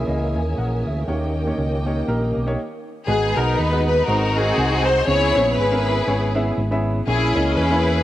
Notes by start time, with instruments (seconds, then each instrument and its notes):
Already playing: tonewheel organ E3 A#3 C#4 G#4, string section A#4 C#5 E5 G#5
0.07 fingered electric bass C#2, grand piano A#3 E4 G#4 D#5
0.36 fingered electric bass D#2, grand piano G#5
0.58 fingered electric bass A#1, grand piano A#4 F#5
0.86 fingered electric bass D2, grand piano G#4 E5
1.07 fingered electric bass D#2, grand piano D#3 A#3 D#4 G4 C#5, tonewheel organ D#3 A#3 C#4 F#4, string section D#5 G5
1.14 tonewheel organ G4
1.46 grand piano A#3 D#4 G4 C#5
1.58 fingered electric bass C#2
1.86 grand piano A#3 D#4 G4 C#5
2.07 fingered electric bass A#1, grand piano A#3 D#4 G4 A#4
2.36 fingered electric bass B1
2.46 grand piano A#3 D#4 G4 C#5
3.07 fingered electric bass G#1, grand piano G#2 G#3 B3 D#4 F#4 B4, string section B3 D#4 G#4
3.36 fingered electric bass B1, grand piano G#3 B3 D#4 F#4 A#4, string section A#4
3.59 fingered electric bass D#2, string section B4
3.72 grand piano G#3 B3 D#4 F#4 B4
3.87 string section B4
4.07 fingered electric bass G#1, grand piano G#2 G#3 C4 D#4 F#4 C5, string section D#4 F#4 A#4
4.36 grand piano G#3 C4 D#4 F#4 A#4, string section C4 D#4 G#4
4.58 fingered electric bass C2
4.72 grand piano G#3 C4 D#4 F#4 C5
4.86 string section C5
5.07 fingered electric bass C#2, grand piano C#3 B3 C#4 E4 G#4 C#5, string section E4 G#4 C#5
5.36 fingered electric bass A#1, grand piano B3 C#4 E4 G#4 C#5
5.57 fingered electric bass G#1, string section E4 G#4 B4
5.71 grand piano B3 C#4 E4 G#4 A#4
6.07 fingered electric bass G#1, grand piano B3 C#4 E4 G#4 C#5
6.35 grand piano B3 C#4 E4 G#4 E5
6.57 fingered electric bass G#1
6.71 grand piano B3 C#4 E4 G#4 E5
7.07 fingered electric bass A#1, grand piano A#2 A#3 C#4 E4 G#4 C#5, string section C#4 E4 G#4
7.35 fingered electric bass C#2, grand piano A#3 C#4 E4 G#4 D#5
7.57 fingered electric bass E2, string section E4 G#4 B4
7.71 grand piano A#3 C#4 E4 G#4 C#5